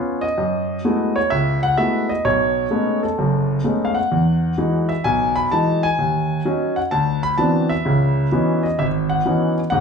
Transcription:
0.00 0.24 B3 soft
0.00 0.24 C#4 soft
0.00 0.24 F4 soft
0.21 1.18 D#5 medium
0.38 0.78 F#2 medium
0.85 1.17 G#3 soft
0.85 1.17 A3 soft
0.85 1.17 B3 soft
0.85 1.18 E4 soft
0.85 1.18 F#4 soft
1.16 1.31 C#5 medium
1.30 1.72 C#2 medium
1.30 1.60 E5 medium
1.63 1.77 F#5 medium
1.77 2.11 G#3 soft
1.77 2.11 A3 soft
1.77 2.11 B3 soft
1.77 2.11 E4 soft
1.77 2.11 F#4 soft
1.77 2.10 E5 medium
2.09 2.25 D#5 medium
2.25 2.65 B1 medium
2.25 2.99 C#5 medium
2.71 3.04 G#3 soft
2.71 3.04 A3 soft
2.71 3.04 B3 soft
2.71 3.04 C#4 soft
2.71 3.04 D#4 medium
3.03 3.60 A4 medium
3.18 3.59 F#1 medium
3.18 3.59 F#2 medium
3.64 3.97 G#3 soft
3.64 3.97 A3 soft
3.64 3.97 B3 soft
3.64 3.98 C#4 soft
3.64 3.98 D#4 soft
3.85 3.95 F5 medium
3.95 4.85 F#5 medium
4.12 4.52 E2 medium
4.58 4.91 E3 soft
4.58 4.91 F#3 soft
4.58 4.91 G#3 soft
4.58 4.91 D#4 medium
4.89 5.05 E5 medium
5.04 5.45 B1 medium
5.04 5.37 G#5 medium
5.36 5.51 B5 medium
5.51 5.85 E3 soft
5.51 5.85 F#3 soft
5.51 5.85 G#3 soft
5.51 5.85 D#4 soft
5.51 5.84 A5 medium
5.83 6.72 G#5 medium
5.99 6.39 D#2 medium
6.45 6.78 F#3 soft
6.45 6.78 C#4 soft
6.45 6.79 D#4 medium
6.76 6.81 F#5 medium
6.91 7.32 D2 medium
6.91 7.21 A5 medium
7.23 7.39 B5 medium
7.38 7.71 E3 soft
7.38 7.71 F#3 soft
7.38 7.71 B3 soft
7.38 7.71 C4 soft
7.38 7.72 D4 soft
7.38 7.67 A5 medium
7.69 8.66 E5 medium
7.85 8.26 C#2 medium
7.85 8.26 C#3 medium
8.32 8.65 E3 soft
8.32 8.65 F#3 soft
8.32 8.65 B3 soft
8.32 8.65 C#4 soft
8.32 8.65 D#4 medium
8.63 8.77 D#5 medium
8.79 9.19 G#1 medium
8.79 8.86 E5 medium
9.10 9.53 F#5 medium
9.25 9.58 E3 soft
9.25 9.58 F#3 soft
9.25 9.58 B3 soft
9.25 9.58 C#4 soft
9.25 9.59 D#4 soft
9.70 9.80 G#1 medium
9.70 9.80 G#2 medium
9.70 9.80 F#5 medium

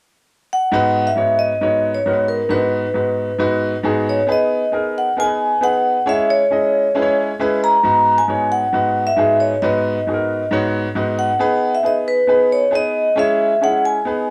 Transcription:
0.53 1.09 F#5 loud
0.72 1.07 G#2 loud
0.72 1.07 B3 medium
0.72 1.07 D#4 medium
0.72 1.08 F#4 medium
0.72 1.08 B4 loud
1.07 1.38 E5 medium
1.16 1.51 G#2 medium
1.16 1.52 B3 medium
1.16 1.52 D#4 medium
1.16 1.52 F#4 medium
1.16 1.52 C#5 medium
1.39 1.91 D#5 medium
1.61 1.96 G#2 medium
1.61 1.96 B3 medium
1.61 1.97 D#4 medium
1.61 1.97 F#4 medium
1.61 1.97 C#5 medium
1.95 2.26 C#5 medium
2.06 2.41 G#2 medium
2.06 2.41 B3 medium
2.06 2.41 D#4 medium
2.06 2.41 F#4 medium
2.06 2.12 A#4 medium
2.13 2.44 B4 medium
2.28 2.49 A#4 medium
2.49 2.85 G#2 medium
2.49 2.85 B3 medium
2.49 2.56 D4 medium
2.49 2.85 F#4 medium
2.49 3.36 B4 medium
2.49 2.85 B4 medium
2.55 2.88 D#4 medium
2.94 3.29 G#2 medium
2.94 3.29 B3 medium
2.94 3.30 D#4 medium
2.94 3.30 F#4 medium
2.94 3.30 B4 medium
3.38 3.74 G#2 medium
3.38 3.74 B3 medium
3.38 3.74 D#4 medium
3.38 3.74 F#4 medium
3.38 3.74 B4 loud
3.83 4.19 G#2 medium
3.83 4.19 B3 medium
3.83 4.19 D#4 medium
3.83 4.19 F#4 medium
3.83 4.19 G#4 medium
4.09 4.19 C#5 medium
4.27 4.63 B3 medium
4.27 4.63 D#4 medium
4.27 4.63 G#4 medium
4.27 4.64 B4 medium
4.32 4.99 D#5 medium
4.72 5.07 B3 medium
4.72 5.08 D#4 medium
4.72 5.08 G#4 medium
4.72 5.08 A#4 medium
4.98 5.08 F#5 medium
5.17 5.52 B3 medium
5.17 5.52 D#4 medium
5.17 5.53 G#4 medium
5.17 5.24 A#4 medium
5.17 5.65 G#5 loud
5.24 5.55 B4 medium
5.61 5.96 B3 medium
5.61 5.97 D#4 medium
5.61 5.97 G#4 medium
5.61 5.97 B4 medium
5.61 6.09 F#5 loud
6.06 6.41 G#3 medium
6.06 6.41 C#4 medium
6.06 6.41 E4 medium
6.06 6.42 G#4 medium
6.06 6.42 C#5 loud
6.06 6.31 E5 medium
6.30 7.15 C#5 medium
6.51 6.86 G#3 medium
6.51 6.86 C#4 medium
6.51 6.86 E4 medium
6.51 6.86 G#4 medium
6.51 6.86 D#5 medium
6.95 7.30 G#3 medium
6.95 7.30 C#4 medium
6.95 7.30 E4 medium
6.95 7.30 G#4 medium
6.95 7.02 B4 medium
7.02 7.34 C#5 medium
7.39 7.74 G#3 medium
7.39 7.75 C#4 medium
7.39 7.75 E4 medium
7.39 7.75 G#4 medium
7.39 7.75 B4 loud
7.64 8.20 A#5 loud
7.83 8.19 G#2 medium
7.83 8.19 B3 medium
7.83 8.19 D#4 medium
7.83 8.19 F#4 medium
7.83 8.19 B4 medium
8.18 8.53 G#5 medium
8.28 8.63 G#2 medium
8.28 8.63 B3 medium
8.28 8.64 D#4 medium
8.28 8.64 F#4 medium
8.28 8.64 C#5 medium
8.52 9.09 F#5 medium
8.73 9.08 G#2 medium
8.73 9.08 B3 medium
8.73 9.08 D#4 medium
8.73 9.08 F#4 medium
8.73 9.09 B4 medium
9.07 9.41 E5 medium
9.16 9.52 G#2 medium
9.16 9.52 B3 medium
9.16 9.52 D#4 medium
9.16 9.53 F#4 medium
9.16 9.53 G#4 medium
9.40 9.63 C#5 medium
9.62 9.97 G#2 medium
9.62 9.97 B3 medium
9.62 9.97 D#4 medium
9.62 9.97 F#4 medium
9.62 9.98 B4 loud
9.62 10.47 D#5 medium
10.07 10.41 G#2 medium
10.07 10.42 B3 medium
10.07 10.42 D#4 medium
10.07 10.42 F#4 medium
10.07 10.13 G#4 medium
10.14 10.45 A#4 medium
10.51 10.86 G#2 medium
10.51 10.86 B3 medium
10.51 10.86 D#4 medium
10.51 10.86 F#4 medium
10.51 10.87 C#5 loud
10.95 11.30 G#2 medium
10.95 11.30 B3 medium
10.95 11.30 D#4 medium
10.95 11.30 F#4 medium
10.95 11.31 B4 medium
11.19 11.76 F#5 medium
11.39 11.74 B3 medium
11.39 11.74 D#4 medium
11.39 11.75 G#4 medium
11.39 11.75 B4 loud
11.75 11.79 E5 medium
11.83 12.18 B3 medium
11.83 12.19 D#4 medium
11.83 12.19 G#4 medium
11.83 12.19 B4 medium
11.83 12.08 D#5 medium
12.08 12.49 B4 medium
12.27 12.63 B3 medium
12.27 12.63 D#4 medium
12.27 12.63 G#4 medium
12.27 12.63 B4 medium
12.52 12.75 C#5 medium
12.71 13.07 B3 medium
12.71 13.07 D#4 medium
12.71 13.07 G#4 medium
12.71 13.08 B4 medium
12.75 13.20 D#5 medium
13.15 13.51 G#3 medium
13.15 13.51 C#4 medium
13.15 13.52 E4 medium
13.15 13.52 G#4 medium
13.15 13.52 C#5 medium
13.15 13.64 E5 medium
13.61 13.96 G#3 medium
13.61 13.96 C#4 medium
13.61 13.67 D#4 soft
13.61 13.97 G#4 medium
13.61 13.97 C#5 medium
13.61 13.84 F#5 medium
13.67 13.99 E4 medium
13.85 14.30 G#5 medium
14.05 14.30 B3 medium
14.05 14.30 D#4 medium
14.05 14.30 G#4 medium
14.05 14.30 B4 medium

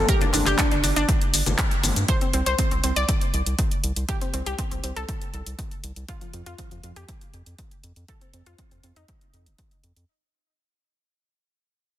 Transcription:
0.09 0.20 G4 loud
0.09 0.17 A#4 loud
0.09 kick loud
0.09 closed hi-hat medium
0.09 shaker soft
0.21 0.30 D4 medium
0.21 closed hi-hat soft
0.21 high conga medium
0.33 0.42 G1 medium
0.33 0.42 D4 medium
0.33 1.05 D4 medium
0.33 open hi-hat loud
0.33 low conga loud
0.33 shaker medium
0.46 0.55 G1 medium
0.46 0.55 G4 medium
0.46 clap soft
0.46 closed hi-hat soft
0.46 shaker soft
0.58 0.67 D4 medium
0.58 kick loud
0.58 clap loud
0.58 closed hi-hat medium
0.58 shaker soft
0.71 0.80 G1 medium
0.71 0.80 D4 medium
0.71 closed hi-hat soft
0.83 0.92 G1 medium
0.83 0.92 D4 medium
0.83 open hi-hat medium
0.83 high conga medium
0.83 shaker medium
0.96 1.05 G1 medium
0.96 1.99 D4 medium
0.96 closed hi-hat soft
0.96 shaker soft
1.09 kick loud
1.09 closed hi-hat medium
1.09 shaker soft
1.21 closed hi-hat soft
1.34 1.42 G1 medium
1.34 open hi-hat loud
1.34 shaker medium
1.46 1.55 G1 medium
1.46 closed hi-hat soft
1.46 high conga medium
1.46 shaker soft
1.58 kick loud
1.58 clap loud
1.58 closed hi-hat medium
1.58 shaker soft
1.71 closed hi-hat soft
1.83 1.92 G1 medium
1.83 open hi-hat medium
1.83 low conga medium
1.83 shaker medium
1.96 2.05 G2 medium
1.96 closed hi-hat soft
1.96 shaker soft
2.08 2.17 C5 medium
2.08 kick loud
2.08 closed hi-hat medium
2.21 2.30 C4 medium
2.21 closed hi-hat soft
2.33 2.42 C2 medium
2.33 2.42 C4 medium
2.33 closed hi-hat medium
2.46 2.55 C2 medium
2.46 2.55 C5 medium
2.46 closed hi-hat soft
2.59 2.67 C4 medium
2.59 kick loud
2.59 closed hi-hat medium
2.71 2.80 C2 medium
2.71 2.80 C4 medium
2.71 closed hi-hat soft
2.84 2.92 C2 medium
2.84 2.92 C4 medium
2.84 closed hi-hat medium
2.96 3.05 C2 medium
2.96 3.99 D5 medium
2.96 closed hi-hat soft
3.09 kick loud
3.09 closed hi-hat medium
3.21 closed hi-hat soft
3.34 3.42 C2 medium
3.34 closed hi-hat soft
3.46 3.55 C2 medium
3.46 closed hi-hat soft
3.59 kick loud
3.59 closed hi-hat medium
3.71 closed hi-hat soft
3.84 3.92 C2 medium
3.84 closed hi-hat medium
3.96 4.05 C2 medium
3.96 closed hi-hat soft
4.09 4.17 G4 loud
4.09 kick loud
4.09 closed hi-hat medium
4.21 4.30 C4 medium
4.21 closed hi-hat soft
4.34 4.42 C2 medium
4.34 4.42 C4 medium
4.34 closed hi-hat medium
4.46 4.55 C2 medium
4.46 4.55 G4 medium
4.46 closed hi-hat soft
4.59 4.67 C4 medium
4.59 kick loud
4.59 closed hi-hat medium
4.71 4.80 C2 medium
4.71 4.80 C4 medium
4.71 closed hi-hat soft
4.84 4.92 C2 medium
4.84 4.92 C4 medium
4.84 closed hi-hat medium
4.96 5.05 C2 medium
4.96 5.99 A4 medium
4.96 closed hi-hat soft
5.09 kick loud
5.09 closed hi-hat medium
5.21 closed hi-hat soft
5.34 5.42 C2 medium
5.34 closed hi-hat soft
5.46 5.55 C2 medium
5.46 closed hi-hat soft
5.59 kick medium
5.59 closed hi-hat medium
5.71 closed hi-hat soft
5.84 5.92 C2 medium
5.84 closed hi-hat medium
5.96 6.05 C2 medium
5.96 closed hi-hat soft
6.09 6.17 F4 loud
6.09 kick loud
6.09 closed hi-hat medium
6.21 6.30 F3 medium
6.21 closed hi-hat soft
6.34 6.42 F2 medium
6.34 6.42 F3 medium
6.34 closed hi-hat medium
6.46 6.55 F2 medium
6.46 6.55 F4 medium
6.46 closed hi-hat soft
6.58 6.67 F3 medium
6.58 kick medium
6.58 closed hi-hat medium
6.71 6.80 F2 medium
6.71 6.80 F3 medium
6.71 closed hi-hat soft
6.83 6.92 F2 medium
6.83 6.92 F3 medium
6.83 closed hi-hat medium
6.96 7.05 F2 medium
6.96 7.99 G4 medium
6.96 closed hi-hat soft
7.08 kick loud
7.08 closed hi-hat medium
7.21 closed hi-hat soft
7.34 7.42 F2 medium
7.34 closed hi-hat soft
7.46 7.55 F2 medium
7.46 closed hi-hat soft
7.58 kick loud
7.58 closed hi-hat medium
7.71 closed hi-hat soft
7.83 7.92 F2 medium
7.83 closed hi-hat medium
7.96 8.05 F2 medium
7.96 closed hi-hat soft
8.08 8.17 A4 loud
8.08 kick loud
8.08 closed hi-hat medium
8.21 8.30 C4 medium
8.21 closed hi-hat soft
8.33 8.42 F2 medium
8.33 8.42 C4 medium
8.33 closed hi-hat medium
8.46 8.55 F2 medium
8.46 8.55 F4 medium
8.46 closed hi-hat soft
8.58 8.67 C4 medium
8.58 kick medium
8.58 closed hi-hat medium
8.71 8.80 F2 medium
8.71 8.80 C4 medium
8.71 closed hi-hat soft
8.83 8.92 F2 medium
8.83 8.92 C4 medium
8.83 closed hi-hat medium
8.96 9.05 F2 medium
8.96 9.99 D#4 medium
8.96 closed hi-hat soft
9.08 kick loud
9.08 closed hi-hat medium
9.21 closed hi-hat soft
9.34 9.48 F2 medium
9.34 closed hi-hat soft
9.46 9.55 F1 medium
9.46 closed hi-hat soft
9.58 kick medium
9.58 closed hi-hat medium
9.71 closed hi-hat soft
9.84 9.92 F2 medium
9.84 closed hi-hat medium
9.96 10.05 F2 medium
9.96 closed hi-hat soft

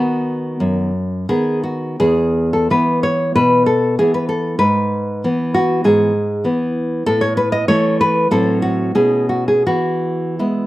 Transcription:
0.00 0.90 D#3 soft
0.00 0.90 B3 medium
0.00 1.24 F#4 medium
0.60 1.25 F#2 medium
1.29 1.96 D#3 soft
1.29 1.95 B3 soft
1.29 1.62 G#4 medium
1.64 1.98 F#4 medium
2.00 2.67 E2 medium
2.00 2.50 G#4 medium
2.53 2.69 A4 medium
2.70 3.63 E3 soft
2.70 3.64 B3 medium
2.70 3.01 B4 medium
3.03 3.34 C#5 medium
3.35 3.96 B2 medium
3.35 3.66 B4 medium
3.66 3.96 A4 medium
3.99 4.57 E3 soft
3.99 4.57 B3 soft
3.99 4.14 G#4 medium
4.14 4.28 B4 medium
4.29 4.58 A4 medium
4.59 5.22 G#2 medium
4.59 5.50 B4 medium
5.24 6.11 E3 medium
5.24 6.11 B3 medium
5.54 5.84 F#4 medium
5.84 6.43 G#2 medium
5.84 6.43 G#4 medium
6.44 7.02 E3 soft
6.44 7.03 B3 medium
7.06 7.67 A2 medium
7.06 7.22 A4 loud
7.21 7.37 C#5 medium
7.37 7.52 B4 medium
7.52 7.68 D#5 medium
7.68 8.27 E3 medium
7.68 8.27 A3 medium
7.68 7.99 C#5 loud
8.01 8.30 B4 medium
8.31 8.93 A2 medium
8.31 8.90 F#3 medium
8.31 8.91 C4 medium
8.31 8.61 A4 medium
8.62 8.93 F#4 medium
8.95 9.64 B2 medium
8.95 9.62 A3 soft
8.95 9.63 C#4 soft
8.95 9.28 G#4 medium
9.29 9.47 F#4 medium
9.48 9.66 G#4 medium
9.66 10.38 E3 medium
9.66 10.37 F#4 medium
10.39 10.67 G#3 soft
10.39 10.67 B3 soft
10.39 10.67 E4 medium

